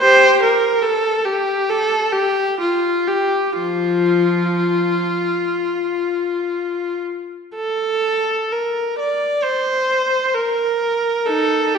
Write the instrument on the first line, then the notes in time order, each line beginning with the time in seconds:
viola
0.00 G4 C5
0.43 A#4
0.81 A4
1.25 G4
1.69 A4
2.12 G4
2.60 F4
3.07 G4
3.58 F3 F4
7.56 A4
8.52 A#4
8.99 D5
9.43 C5
10.34 A#4
11.26 D#4 A4
11.74 G4